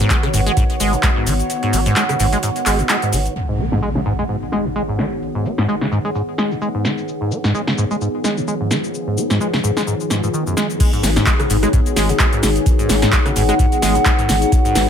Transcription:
Already playing: D#3 B3 F#4 C#5 F#5
0.00 cabasa
0.10 G#3, kick, clap, closed hi-hat, cabasa
0.23 C#3, cross-stick, closed hi-hat
0.33 G#1 G#2, open hi-hat, cabasa
0.46 G#3, closed hi-hat, cabasa
0.57 G#2, kick, closed hi-hat, cabasa
0.70 closed hi-hat
0.80 G#1 G#3, open hi-hat, cabasa
0.93 G#2, closed hi-hat, cabasa
1.03 G#3, kick, clap, closed hi-hat, cabasa
1.16 G#2
1.27 G#1 D#3, open hi-hat, cabasa
1.39 closed hi-hat, cabasa
1.50 closed hi-hat, cabasa
1.63 G#2, closed hi-hat
1.73 G#1 B3, open hi-hat, cabasa
1.86 G#2, closed hi-hat, cabasa
1.96 G#3, clap, closed hi-hat, cabasa
2.09 C#3, cross-stick, closed hi-hat, cabasa
2.20 G#1 G#2, open hi-hat, cabasa
2.33 G#3, closed hi-hat, cabasa
2.43 G#2, closed hi-hat, cabasa
2.56 closed hi-hat, cabasa
2.66 G#1 G#3, clap, open hi-hat, cabasa
2.79 G#2, closed hi-hat, cabasa
2.89 G#3, clap, closed hi-hat, cabasa
3.02 G#2, closed hi-hat, cabasa
3.13 G#1 D#3, open hi-hat, cabasa
3.26 closed hi-hat, cabasa
3.36 D#3 B3 D#4 F#4 G#4, impact
3.49 G#2
3.57 B3 G#4, cabasa
3.72 G#2, snare
3.83 G#3
3.95 C#3, snare
4.06 G#2, cabasa
4.19 G#3 C#5
4.29 G#2, cabasa
4.52 G#3, snare, cabasa
4.65 G#2, cabasa
4.76 G#3, cabasa
4.88 G#2
4.99 D#3, snare, cabasa
5.12 cabasa
5.22 cabasa
5.35 G#2
5.45 B3, cabasa
5.58 G#2, snare, cabasa
5.69 G#3, cabasa
5.81 C#3, snare
5.92 G#2, cabasa
6.05 G#3, cabasa
6.15 G#2, cabasa
6.38 G#3, snare, cabasa
6.51 G#2, cabasa
6.62 G#3, cabasa
6.75 G#2
6.85 D#3, snare, cabasa
6.98 cabasa
7.08 F3, cabasa
7.21 G#2
7.31 B3, cabasa
7.44 G#2, snare, cabasa
7.55 G#3, cabasa
7.67 C#3, snare
7.78 G#2, cabasa
7.91 G#3, cabasa
8.01 G#2, cabasa
8.24 G#3, snare, cabasa
8.37 G#2, cabasa
8.48 G#3, cabasa
8.61 G#2
8.71 D#3, snare, cabasa
8.84 cabasa
8.94 cabasa
9.07 G#2
9.17 B3, cabasa
9.30 G#2, snare, cabasa
9.41 G#3, cabasa
9.53 C#3, snare
9.64 G#2, cabasa
9.77 G#3, snare, cabasa
9.87 G#2, cabasa
10.00 cabasa
10.10 G#2, snare, cabasa
10.23 G#2, cabasa
10.34 D#3, cabasa
10.47 F#2, cabasa
10.57 G#3, snare, cabasa
10.70 cabasa
10.80 D#3 B3 F#4 G#4, kick, closed hi-hat, crash, cabasa
10.93 G#2, closed hi-hat, cabasa
11.03 G#1 B3, snare, open hi-hat, cabasa
11.16 G#2, snare, closed hi-hat, cabasa
11.26 G#3, kick, clap, closed hi-hat, cabasa
11.40 C#3, cross-stick, closed hi-hat, cabasa
11.50 G#1 G#2, open hi-hat, cabasa
11.63 G#3, cross-stick, closed hi-hat, cabasa
11.73 G#2, kick, closed hi-hat, cabasa
11.86 closed hi-hat, cabasa
11.96 G#1 G#3, snare, open hi-hat, cabasa
12.09 G#2, closed hi-hat, cabasa
12.19 G#3, kick, clap, closed hi-hat, cabasa
12.33 G#2, closed hi-hat, cabasa
12.38 F#5
12.43 G#1 D#3, snare, open hi-hat, cabasa
12.56 closed hi-hat, cabasa
12.66 kick, closed hi-hat, cabasa
12.79 G#2, closed hi-hat, cabasa
12.89 G#1 B3, snare, open hi-hat, cabasa
13.02 G#2, snare, closed hi-hat, cabasa
13.12 G#3, kick, clap, closed hi-hat, cabasa
13.26 C#3, cross-stick, closed hi-hat, cabasa
13.36 G#1 G#2, open hi-hat, cabasa
13.49 G#3, cross-stick, closed hi-hat, cabasa
13.59 G#2, kick, closed hi-hat, cabasa
13.72 closed hi-hat, cabasa
13.82 G#1 G#3, snare, open hi-hat, cabasa
13.95 G#2, closed hi-hat, cabasa
14.05 G#3, kick, clap, closed hi-hat, cabasa
14.19 G#2, closed hi-hat, cabasa
14.29 G#1 D#3, snare, open hi-hat, cabasa
14.42 closed hi-hat, cabasa
14.52 B4, kick, closed hi-hat, cabasa
14.65 G#2, closed hi-hat, cabasa
14.75 G#1 B3, snare, open hi-hat, cabasa

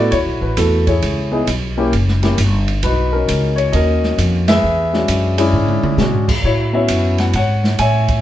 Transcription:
Already playing: A2 E4 F#4 A4 B4 D5
0.11 D2 E4 F#4 C#5, kick, ride
0.26 B1
0.41 A1 B4
0.57 E2 A3 B3 E4 F#4 A4, kick, hi-hat pedal, ride
0.87 E4 G#4 C#5, kick, ride
1.02 C#2, kick, ride
1.31 B3 D#4 E4 G#4
1.47 B1, kick, hi-hat pedal, ride
1.77 A#3 C#4 E4 G4
1.92 F#1, kick, ride
2.08 snare
2.22 A#3 C#4 E4 G4, snare, ride
2.38 G1, kick, hi-hat pedal, ride
2.68 ride
2.83 B1 D#4 F#4 B4, kick, ride
3.13 C#4 D#4 A#4
3.28 C#2, kick, hi-hat pedal, ride
3.56 C#5, ride
3.72 D#2 A#3 C#4 D#4 F#4 A#4 D#5, kick, ride
4.04 snare
4.18 F2, kick, hi-hat pedal, ride
4.48 G#4 B4 E5, snare, ride
4.63 E2
4.93 G#3 C#4 D4 F#4, snare
5.08 F#2, kick, hi-hat pedal, ride
5.38 G#3 C#4 D4 E4, ride
5.52 G#2, mid tom
5.68 mid tom
5.83 muted upright bass stroke, mid tom
5.97 B2 G#3 C#4 D4 F#4, snare, hi-hat pedal
6.12 G#2
6.27 E2, kick, crash
6.43 A2 E4 F#4 C#5, kick
6.73 B3 C#4 E4 F#4 C#5 E5
6.88 F#2, kick, hi-hat pedal, ride
7.18 F#5, snare, ride
7.33 G#2 C#5 F#5, kick, ride
7.64 snare
7.79 A2 C#5 E5 G#5, kick, hi-hat pedal, ride
8.08 kick, ride

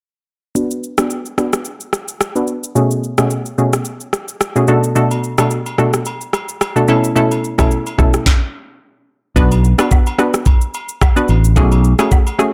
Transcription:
0.55 B3 D4 F#4 B4, shaker
0.71 shaker
0.83 shaker
0.98 B3 D4 F#4 B4, cross-stick, shaker
1.10 shaker
1.26 shaker
1.38 B3 D4 F#4 B4, cross-stick, shaker
1.53 cross-stick, shaker
1.65 shaker
1.80 shaker
1.93 cross-stick, shaker
2.08 shaker
2.21 cross-stick, shaker
2.35 B3 D4 F#4 B4, shaker
2.47 shaker
2.64 shaker
2.75 B2 A3 C#4 F#4 G#4, shaker
2.91 shaker
3.04 shaker
3.18 B2 A3 C#4 F#4 G#4, cross-stick, shaker
3.30 shaker
3.46 shaker
3.58 B2 A3 C#4 F#4 G#4, shaker
3.73 cross-stick, shaker
3.85 shaker
4.00 shaker
4.13 cross-stick, shaker
4.28 shaker
4.41 cross-stick, shaker
4.56 B2 A3 C#4 F#4 G#4, shaker
4.68 B2 A3 D4 F#4 A4, shaker
4.84 shaker
4.95 B2 A3 D4 F#4 A4, shaker
5.11 high agogo, shaker
5.24 shaker
5.38 B2 A3 D4 F#4 A4, cross-stick, high agogo, shaker
5.51 shaker
5.66 high agogo, shaker
5.78 B2 A3 D4 F#4 A4, cross-stick, shaker
5.93 cross-stick, shaker
6.05 high agogo, shaker
6.21 shaker
6.33 cross-stick, high agogo, shaker
6.49 shaker
6.61 cross-stick, high agogo, shaker
6.76 B2 A3 D4 F#4 A4, shaker
6.88 B2 A3 C#4 E4 A4, high agogo, shaker
7.04 shaker
7.16 B2 A3 C#4 E4 A4, shaker
7.31 high agogo, shaker
7.44 shaker
7.58 B2 A3 C#4 E4 A4, kick, cross-stick, high agogo, shaker
7.71 shaker
7.86 high agogo, shaker
7.98 B2 A3 C#4 E4 A4, kick, cross-stick, shaker
8.14 cross-stick, shaker
8.26 kick, snare
9.36 B1 B3 D4 F#4 B4, kick, shaker
9.52 high agogo, shaker
9.64 shaker
9.78 B3 D4 F#4 B4, cross-stick, high agogo, shaker
9.91 kick, low woodblock, shaker
10.06 high agogo, shaker
10.18 B3 D4 F#4 B4, cross-stick, shaker
10.34 cross-stick, shaker
10.45 kick, high agogo, shaker
10.61 shaker
10.74 high agogo, shaker
10.89 shaker
11.01 kick, cross-stick, high agogo, low woodblock, shaker
11.16 B3 D4 F#4 B4, shaker
11.28 A1, high agogo, shaker
11.44 shaker
11.56 B1 A3 C#4 F#4 G#4, kick, shaker
11.72 high agogo, shaker
11.84 shaker
11.99 A3 C#4 F#4 G#4, cross-stick, high agogo, shaker
12.11 kick, low woodblock, shaker
12.27 high agogo, shaker
12.39 A3 C#4 F#4 G#4, cross-stick, shaker

